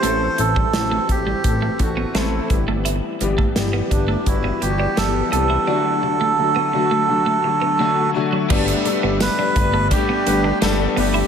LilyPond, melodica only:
\new Staff \with { instrumentName = "Melodica" } { \time 4/4 \key g \major \tempo 4 = 85 c''8 a'4 g'4 fis'8 e'8. r16 | r4. d'8 e'8 g'8 a'8 a'8~ | a'2.~ a'8 r8 | r4 b'4 g'4 r8 g'8 | }